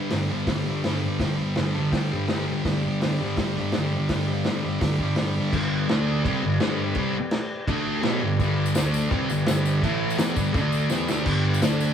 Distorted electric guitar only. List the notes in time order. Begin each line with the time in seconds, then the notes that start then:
Already playing: G2 D3 G3
0.11 G2 D3
0.15 G3
0.29 D3 G3
0.34 G2
0.47 G2 D3
0.52 G3
0.64 D3 G3
0.70 G2
0.83 G2 D3
0.87 G3
1.02 G3
1.07 D3
1.20 G2 D3
1.24 G3
1.39 G3
1.43 D3
1.57 G2 D3
1.62 G3
1.76 D3 G3
1.81 G2
1.93 G2 D3
1.98 G3
2.13 G2 D3 G3
2.30 G2 D3
2.34 G3
2.47 G3
2.52 D3
2.65 G2 D3
2.70 G3
2.83 G3
2.88 D3
3.01 G2 D3
3.05 G3
3.20 D3 G3
3.25 G2
3.37 G2 D3
3.42 G3
3.57 G2 D3 G3
3.75 G2 D3
3.79 G3
3.93 G3
3.98 D3
4.10 G2 D3
4.15 G3
4.28 G3
4.33 D3
4.44 G2 D3
4.49 G3
4.63 D3 G3
4.68 G2
4.80 G2 D3
4.85 G3
4.98 D3 G3
5.03 G2
5.18 G2 D3
5.22 G3
5.36 G3
5.40 D3
5.54 G2 D3 G3
5.88 D3 A3 D4
6.25 C3 G3 C4
6.43 G2 D3
6.60 G2 D3 G3
6.97 C3 G3 C4
7.68 D3 A3 D4
8.03 B2 F#3 B3
8.22 G2 D3
8.41 G2 D3 G3
8.76 D3 A3 D4
9.10 C3 G3 C4
9.29 G2 D3
9.47 G2 D3 G3
9.83 A2 E3 A3
10.19 E3 B3 E4
10.37 G2 D3 G3
10.53 D3 A3 D4
10.90 E3 B3 E4
11.09 D3 A3 D4
11.26 G2 D3 G3
11.62 D3 A3 D4